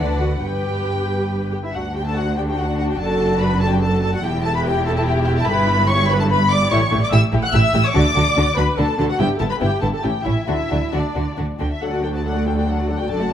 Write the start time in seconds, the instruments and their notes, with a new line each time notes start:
0.00 double bass section D2, cello section D3, viola section D4, violin section B4 D5 F#5
0.20 viola section F#4
0.42 double bass section G1, cello section G2, viola section G4, violin section B4 G5
1.52 viola section G4, violin section G5
1.64 viola section E4, violin section E5
1.74 double bass section D2, cello section D2, violin section D4 F#4 F#5, viola section F#4
1.96 viola section G4, violin section G5
2.06 viola section A4, violin section A5
2.16 viola section F#4, violin section F#5
2.37 viola section G4, violin section G5
2.49 viola section G4, violin section G5
2.59 viola section F#4, violin section F#5
2.79 viola section F#4, violin section F#5
2.90 viola section G4, violin section G5
3.00 double bass section F#1, cello section F#2, viola section A4, violin section A5
3.41 viola section B4, violin section B5
3.61 viola section A4, violin section A5
3.72 viola section G4, violin section G5
3.83 viola section A4, violin section A5
4.03 viola section A4, violin section A5
4.14 viola section F#4, violin section F#5
4.24 double bass section E1, cello section E2, violin section E4 G4 G5, viola section G4
4.45 viola section A4, violin section A5
4.55 viola section B4, violin section B5
4.65 viola section G4, violin section G5
4.86 viola section A4, violin section A5
4.96 viola section A4, violin section A5
5.06 viola section G4, violin section G5
5.27 viola section G4, violin section G5
5.38 viola section A4, violin section A5
5.48 double bass section G1, cello section G2, viola section B4, violin section B5
5.89 viola section C#5, violin section C#6
6.10 viola section B4, violin section B5
6.20 viola section A4, violin section A5
6.30 viola section B4, violin section B5
6.51 viola section D5, violin section D6
6.71 double bass section A1, cello section A2, violin section E4 G4 C#6, viola section C#5
6.91 double bass section A1, cello section A2, violin section E4 G4
7.02 viola section D5, violin section D6
7.12 double bass section A1, cello section A2, violin section E4 G4 E6, viola section E5
7.33 double bass section A1, cello section A2, violin section E4 G4
7.42 viola section F#5, violin section F#6
7.53 double bass section A1, cello section A2, violin section E4 G4 E6, viola section E5
7.74 double bass section A1, cello section A2, violin section E4 G4
7.84 viola section C#5, violin section C#6
7.95 double bass section D2, cello section D3, violin section D4 F#4 D6, viola section D5
8.15 double bass section D2, cello section D3, violin section D4 F#4
8.36 double bass section D2, cello section D3, violin section D4 F#4
8.57 double bass section D2, cello section D3, violin section D4 F#4 B5, viola section B4
8.77 double bass section D2, cello section D3, violin section D4 F#4 A5, viola section A4
8.98 double bass section D2, cello section D3, violin section D4 F#4 A5, viola section A4
9.09 viola section F#4, violin section F#5
9.19 double bass section G1, cello section G2, violin section B3 E4 G5, viola section G4
9.40 double bass section G1, cello section G2, violin section B3 E4 A5, viola section A4
9.50 viola section B4, violin section B5
9.60 double bass section G1, cello section G2, violin section B3 E4 G5, viola section G4
9.82 double bass section G1, cello section G2, violin section B3 E4 A5, viola section A4
9.94 viola section A4, violin section A5
10.03 double bass section A1, cello section A2, violin section C#4 E4 G5, viola section G4
10.25 double bass section A1, cello section A2, violin section C#4 E4 E5, viola section E4
10.48 double bass section D2, cello section D3, violin section D4 F#4 E5, viola section E4
10.70 double bass section D2, cello section D3, violin section D4 F#4
10.93 double bass section D2, cello section D3, violin section D4 F#4 D5, viola section D4
11.15 double bass section D2, cello section D3, violin section D4 F#4
11.38 double bass section D2, cello section D3, violin section D4 F#4
11.60 double bass section D2, cello section D3, violin section D4 F#4 G5
11.71 violin section E5
11.81 cello section D2, double bass section D2, viola section F#3 D4, violin section A4 F#5
11.92 viola section A3 F#4, violin section F#4 D5
12.03 viola section F#3 D4, violin section A4 G5
12.14 viola section A3 F#4, violin section F#4 D5 A5
12.24 viola section F#3 D4, violin section A4 F#5
12.36 viola section A3 F#4, violin section F#4 D5
12.46 viola section F#3 D4, violin section A4 G5
12.57 viola section A3 F#4, violin section F#4 D5 G5
12.68 viola section F#3 D4, violin section A4 F#5
12.78 viola section A3 F#4, violin section F#4 D5
12.88 viola section F#3 D4, violin section A4 F#5
12.99 viola section A3 F#4, violin section F#4 D5 G5
13.09 double bass section F#1, cello section F#2, viola section F#3 D4, violin section A4 D5 A5
13.20 viola section A3 F#4, violin section F#4 F#5